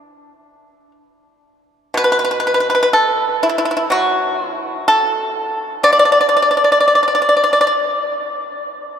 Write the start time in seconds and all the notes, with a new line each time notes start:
Already playing: D4
1.94 B2 B4
2.04 B4
2.12 B4
2.19 B4
2.25 B4
2.31 B4
2.40 B4
2.47 B4
2.54 B4
2.60 B4
2.70 B4
2.75 B4
2.83 B4
2.93 A4
3.43 E4
3.49 E4
3.58 E4
3.65 E4
3.71 E4
3.77 E4
3.90 F#3 F#4
4.39 F4
4.51 E4
4.88 A4
5.83 D3 D5
5.93 D5
5.99 D5
6.05 D5
6.12 D5
6.21 D5
6.29 D5
6.37 D5
6.42 D5
6.51 D5
6.57 D5
6.64 D5
6.72 D5
6.80 D5
6.88 D5
6.95 D5
7.03 D5
7.08 D5
7.15 D5
7.22 D5
7.29 D5
7.37 D5
7.44 D5
7.53 D5
7.61 D5
7.67 D5